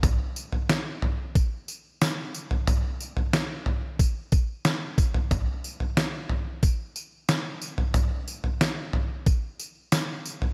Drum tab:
TB |x-x-x---x-x-x-x-|x-x-x---x-x-x-x-|x-x-x---x-x-x-x-|x-x-x---x-x-x-x-|
SD |----o-------o---|----o-------o---|----o-------o---|----o-------o---|
FT |o--o--o--------o|o--o--o--------o|o--o--o--------o|o--o--o--------o|
BD |o-------o-------|--------o-o---o-|o-------o-------|--------o-------|